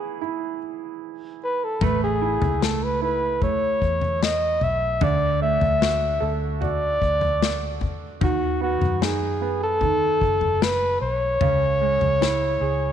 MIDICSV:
0, 0, Header, 1, 5, 480
1, 0, Start_track
1, 0, Tempo, 800000
1, 1090, Time_signature, 4, 2, 24, 8
1, 7754, End_track
2, 0, Start_track
2, 0, Title_t, "Flugelhorn"
2, 0, Program_c, 0, 56
2, 864, Note_on_c, 0, 71, 85
2, 986, Note_on_c, 0, 69, 84
2, 995, Note_off_c, 0, 71, 0
2, 1104, Note_on_c, 0, 71, 101
2, 1113, Note_off_c, 0, 69, 0
2, 1216, Note_off_c, 0, 71, 0
2, 1223, Note_on_c, 0, 68, 82
2, 1583, Note_on_c, 0, 69, 80
2, 1592, Note_off_c, 0, 68, 0
2, 1700, Note_on_c, 0, 71, 91
2, 1709, Note_off_c, 0, 69, 0
2, 1815, Note_off_c, 0, 71, 0
2, 1819, Note_on_c, 0, 71, 79
2, 2037, Note_off_c, 0, 71, 0
2, 2061, Note_on_c, 0, 73, 92
2, 2539, Note_on_c, 0, 75, 106
2, 2548, Note_off_c, 0, 73, 0
2, 2779, Note_on_c, 0, 76, 95
2, 2788, Note_off_c, 0, 75, 0
2, 3018, Note_on_c, 0, 74, 111
2, 3027, Note_off_c, 0, 76, 0
2, 3252, Note_off_c, 0, 74, 0
2, 3256, Note_on_c, 0, 76, 109
2, 3787, Note_off_c, 0, 76, 0
2, 3982, Note_on_c, 0, 74, 100
2, 4672, Note_off_c, 0, 74, 0
2, 4939, Note_on_c, 0, 66, 94
2, 5158, Note_off_c, 0, 66, 0
2, 5175, Note_on_c, 0, 66, 98
2, 5419, Note_on_c, 0, 68, 84
2, 5428, Note_off_c, 0, 66, 0
2, 5774, Note_off_c, 0, 68, 0
2, 5778, Note_on_c, 0, 69, 110
2, 6375, Note_on_c, 0, 71, 104
2, 6384, Note_off_c, 0, 69, 0
2, 6604, Note_off_c, 0, 71, 0
2, 6608, Note_on_c, 0, 73, 113
2, 7754, Note_off_c, 0, 73, 0
2, 7754, End_track
3, 0, Start_track
3, 0, Title_t, "Grand piano"
3, 0, Program_c, 1, 0
3, 0, Control_c, 1, 64, 127
3, 0, Note_on_c, 1, 52, 79
3, 0, Note_on_c, 1, 59, 53
3, 0, Note_on_c, 1, 64, 62
3, 0, Note_on_c, 1, 68, 60
3, 120, Note_off_c, 1, 64, 0
3, 129, Note_on_c, 1, 64, 53
3, 344, Note_off_c, 1, 59, 0
3, 827, Note_off_c, 1, 68, 0
3, 1065, Note_off_c, 1, 64, 0
3, 1066, Note_off_c, 1, 52, 0
3, 1093, Note_on_c, 1, 57, 80
3, 1098, Control_c, 1, 64, 0
3, 1199, Control_c, 1, 64, 127
3, 1328, Note_on_c, 1, 64, 58
3, 1559, Note_off_c, 1, 57, 0
3, 1568, Note_on_c, 1, 57, 53
3, 1801, Note_off_c, 1, 64, 0
3, 1810, Note_on_c, 1, 64, 52
3, 2039, Note_off_c, 1, 57, 0
3, 2048, Note_on_c, 1, 57, 50
3, 2746, Note_off_c, 1, 64, 0
3, 2985, Note_off_c, 1, 57, 0
3, 3008, Note_on_c, 1, 50, 81
3, 3018, Control_c, 1, 64, 0
3, 3131, Control_c, 1, 64, 127
3, 3248, Note_on_c, 1, 57, 54
3, 3489, Note_on_c, 1, 66, 57
3, 3723, Note_on_c, 1, 69, 61
3, 3956, Note_off_c, 1, 66, 0
3, 3965, Note_on_c, 1, 66, 59
3, 4185, Note_off_c, 1, 57, 0
3, 4662, Note_off_c, 1, 69, 0
3, 4903, Note_off_c, 1, 66, 0
3, 4904, Note_off_c, 1, 50, 0
3, 4926, Note_on_c, 1, 51, 78
3, 4937, Control_c, 1, 64, 0
3, 5035, Control_c, 1, 64, 127
3, 5165, Note_on_c, 1, 59, 52
3, 5408, Note_on_c, 1, 63, 54
3, 5640, Note_off_c, 1, 59, 0
3, 5649, Note_on_c, 1, 59, 55
3, 5883, Note_off_c, 1, 51, 0
3, 5892, Note_on_c, 1, 51, 55
3, 6345, Note_off_c, 1, 63, 0
3, 6585, Note_off_c, 1, 59, 0
3, 6827, Note_off_c, 1, 51, 0
3, 6849, Note_on_c, 1, 49, 80
3, 6856, Control_c, 1, 64, 0
3, 6959, Control_c, 1, 64, 127
3, 7088, Note_on_c, 1, 56, 56
3, 7326, Note_on_c, 1, 64, 61
3, 7567, Note_on_c, 1, 68, 57
3, 7754, Note_off_c, 1, 49, 0
3, 7754, Note_off_c, 1, 56, 0
3, 7754, Note_off_c, 1, 64, 0
3, 7754, Note_off_c, 1, 68, 0
3, 7754, End_track
4, 0, Start_track
4, 0, Title_t, "Fingered electric bass"
4, 0, Program_c, 2, 33
4, 1088, Note_on_c, 2, 33, 107
4, 1425, Note_off_c, 2, 33, 0
4, 1451, Note_on_c, 2, 37, 86
4, 2266, Note_off_c, 2, 37, 0
4, 2290, Note_on_c, 2, 40, 91
4, 2746, Note_off_c, 2, 40, 0
4, 2767, Note_on_c, 2, 35, 85
4, 2991, Note_off_c, 2, 35, 0
4, 3007, Note_on_c, 2, 38, 111
4, 3344, Note_off_c, 2, 38, 0
4, 3369, Note_on_c, 2, 38, 106
4, 3705, Note_off_c, 2, 38, 0
4, 3731, Note_on_c, 2, 38, 113
4, 4186, Note_off_c, 2, 38, 0
4, 4209, Note_on_c, 2, 38, 105
4, 4665, Note_off_c, 2, 38, 0
4, 4927, Note_on_c, 2, 39, 96
4, 5264, Note_off_c, 2, 39, 0
4, 5284, Note_on_c, 2, 42, 78
4, 6103, Note_off_c, 2, 42, 0
4, 6128, Note_on_c, 2, 30, 110
4, 6585, Note_off_c, 2, 30, 0
4, 6609, Note_on_c, 2, 35, 79
4, 6832, Note_off_c, 2, 35, 0
4, 6847, Note_on_c, 2, 37, 110
4, 7184, Note_off_c, 2, 37, 0
4, 7209, Note_on_c, 2, 37, 89
4, 7545, Note_off_c, 2, 37, 0
4, 7567, Note_on_c, 2, 37, 89
4, 7754, Note_off_c, 2, 37, 0
4, 7754, End_track
5, 0, Start_track
5, 0, Title_t, "Drums"
5, 1087, Note_on_c, 9, 43, 120
5, 1089, Note_on_c, 9, 36, 106
5, 1147, Note_off_c, 9, 43, 0
5, 1149, Note_off_c, 9, 36, 0
5, 1450, Note_on_c, 9, 43, 82
5, 1510, Note_off_c, 9, 43, 0
5, 1575, Note_on_c, 9, 38, 112
5, 1635, Note_off_c, 9, 38, 0
5, 2050, Note_on_c, 9, 36, 84
5, 2050, Note_on_c, 9, 43, 65
5, 2110, Note_off_c, 9, 36, 0
5, 2110, Note_off_c, 9, 43, 0
5, 2290, Note_on_c, 9, 36, 85
5, 2350, Note_off_c, 9, 36, 0
5, 2409, Note_on_c, 9, 43, 61
5, 2469, Note_off_c, 9, 43, 0
5, 2535, Note_on_c, 9, 38, 103
5, 2595, Note_off_c, 9, 38, 0
5, 2767, Note_on_c, 9, 43, 61
5, 2827, Note_off_c, 9, 43, 0
5, 3007, Note_on_c, 9, 43, 127
5, 3067, Note_off_c, 9, 43, 0
5, 3368, Note_on_c, 9, 43, 71
5, 3428, Note_off_c, 9, 43, 0
5, 3492, Note_on_c, 9, 38, 117
5, 3552, Note_off_c, 9, 38, 0
5, 3970, Note_on_c, 9, 43, 59
5, 4030, Note_off_c, 9, 43, 0
5, 4210, Note_on_c, 9, 36, 93
5, 4270, Note_off_c, 9, 36, 0
5, 4328, Note_on_c, 9, 43, 60
5, 4388, Note_off_c, 9, 43, 0
5, 4455, Note_on_c, 9, 38, 103
5, 4515, Note_off_c, 9, 38, 0
5, 4686, Note_on_c, 9, 43, 65
5, 4689, Note_on_c, 9, 36, 88
5, 4746, Note_off_c, 9, 43, 0
5, 4749, Note_off_c, 9, 36, 0
5, 4928, Note_on_c, 9, 43, 124
5, 4929, Note_on_c, 9, 36, 106
5, 4988, Note_off_c, 9, 43, 0
5, 4989, Note_off_c, 9, 36, 0
5, 5289, Note_on_c, 9, 43, 77
5, 5349, Note_off_c, 9, 43, 0
5, 5413, Note_on_c, 9, 38, 102
5, 5473, Note_off_c, 9, 38, 0
5, 5885, Note_on_c, 9, 43, 68
5, 5888, Note_on_c, 9, 36, 84
5, 5945, Note_off_c, 9, 43, 0
5, 5948, Note_off_c, 9, 36, 0
5, 6128, Note_on_c, 9, 36, 84
5, 6188, Note_off_c, 9, 36, 0
5, 6246, Note_on_c, 9, 43, 63
5, 6306, Note_off_c, 9, 43, 0
5, 6373, Note_on_c, 9, 38, 114
5, 6433, Note_off_c, 9, 38, 0
5, 6845, Note_on_c, 9, 43, 127
5, 6905, Note_off_c, 9, 43, 0
5, 7207, Note_on_c, 9, 43, 75
5, 7267, Note_off_c, 9, 43, 0
5, 7333, Note_on_c, 9, 38, 116
5, 7393, Note_off_c, 9, 38, 0
5, 7754, End_track
0, 0, End_of_file